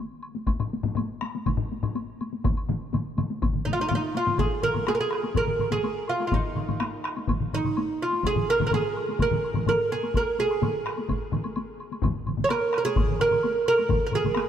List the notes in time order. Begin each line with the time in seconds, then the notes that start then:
0.23 high woodblock
0.35 taiko high
0.47 taiko, taiko high, high woodblock
0.60 taiko low-mid, high woodblock
0.73 taiko high
0.83 taiko low-mid, taiko high
0.95 taiko low-mid, taiko high, high woodblock
1.21 taiko rim, taiko high, high woodblock
1.35 taiko high
1.46 taiko, taiko high, high woodblock
1.57 taiko low-mid
1.72 taiko high
1.83 taiko low-mid, high woodblock
1.95 taiko high, high woodblock
2.21 taiko high, high woodblock
2.33 taiko high
2.44 taiko, taiko low-mid, taiko mid, taiko high, high woodblock
2.57 high woodblock
2.69 taiko low-mid, taiko mid, taiko high
2.93 taiko low-mid, taiko mid, taiko high, high woodblock
3.18 taiko low-mid, taiko mid, taiko high, high woodblock
3.30 taiko high
3.42 taiko, taiko low-mid, taiko mid, taiko high, high woodblock
3.54 taiko low-mid, taiko mid
3.65 D#4, taiko low-mid, taiko mid, taiko high
3.73 F4
3.79 D#4, taiko high, high woodblock
3.89 F4, taiko low-mid, taiko mid, taiko high, high woodblock
3.95 D#4
4.14 F4, taiko high, high woodblock
4.27 taiko low-mid, taiko mid, taiko high
4.38 G#4, taiko, taiko low-mid, taiko mid, taiko high, high woodblock
4.62 A#4, taiko low-mid, taiko mid, high woodblock
4.74 taiko low-mid, taiko mid, taiko high, high woodblock
4.87 taiko rim, taiko high, high woodblock
4.88 G#4, taiko rim
4.95 A#4
5.01 G#4
5.11 taiko rim, high woodblock
5.13 taiko rim
5.23 taiko high, high woodblock
5.34 A#4, taiko, taiko low-mid, taiko mid, taiko high, high woodblock
5.47 taiko low-mid, taiko mid
5.59 taiko low-mid, taiko mid, high woodblock
5.71 G#4, taiko low-mid, taiko mid, taiko high, high woodblock
5.83 taiko high, high woodblock
6.07 F4, high woodblock
6.20 taiko high, high woodblock
6.27 F4
6.32 D#4, taiko, taiko low-mid, taiko mid, taiko high, high woodblock
6.55 taiko low-mid, taiko mid, high woodblock
6.68 taiko low-mid, taiko mid, taiko high, high woodblock
6.80 taiko rim, taiko high, high woodblock
7.04 taiko rim, high woodblock
7.17 taiko high, high woodblock
7.27 taiko, taiko low-mid, taiko mid, taiko high, high woodblock
7.40 taiko low-mid, taiko mid
7.53 D#4, taiko low-mid, taiko mid, high woodblock
7.64 taiko low-mid, taiko mid, high woodblock
7.77 taiko high, high woodblock
8.02 F4, high woodblock
8.13 taiko high, high woodblock
8.24 G#4, taiko, taiko high, high woodblock
8.36 taiko low-mid, taiko mid
8.49 A#4, high woodblock
8.60 taiko low-mid, taiko mid, taiko high, high woodblock
8.67 A#4
8.71 G#4, taiko low-mid, taiko mid, taiko high, high woodblock
8.97 high woodblock
9.08 taiko high, high woodblock
9.19 A#4, taiko, taiko high, high woodblock
9.31 taiko low-mid, taiko mid
9.44 high woodblock
9.54 taiko low-mid, taiko mid, taiko high, high woodblock
9.66 A#4, taiko low-mid, taiko mid, taiko high, high woodblock
9.92 G#4, high woodblock
10.03 taiko high, high woodblock
10.14 A#4, taiko, taiko high, high woodblock
10.39 G#4, taiko high, high woodblock
10.51 high woodblock
10.62 taiko low-mid, taiko mid, taiko high, high woodblock
10.86 taiko rim, high woodblock
10.97 taiko high, high woodblock
11.09 taiko, taiko high, high woodblock
11.32 taiko low-mid, taiko mid, high woodblock
11.44 taiko high, high woodblock
11.56 taiko high, high woodblock
11.80 high woodblock
11.92 taiko high, high woodblock
12.02 taiko, taiko low-mid, taiko mid, taiko high, high woodblock
12.26 taiko low-mid, taiko mid, high woodblock
12.37 taiko low-mid, taiko mid, taiko high
12.44 C#5
12.49 A#4, taiko rim, taiko high, high woodblock
12.51 taiko rim
12.73 taiko rim, high woodblock
12.78 A#4
12.85 G#4, taiko high, high woodblock
12.96 taiko, taiko low-mid, taiko mid, taiko high, high woodblock
13.08 taiko low-mid, taiko mid
13.19 A#4, taiko low-mid, taiko mid, high woodblock
13.31 taiko low-mid, taiko mid, high woodblock
13.43 taiko high, high woodblock
13.66 A#4, high woodblock
13.78 taiko high, high woodblock
13.89 taiko, taiko low-mid, taiko mid, taiko high, high woodblock
14.07 A#4
14.12 G#4, taiko low-mid, taiko mid, high woodblock
14.24 taiko low-mid, taiko mid, taiko high, high woodblock
14.35 taiko rim, taiko high, high woodblock
14.37 taiko rim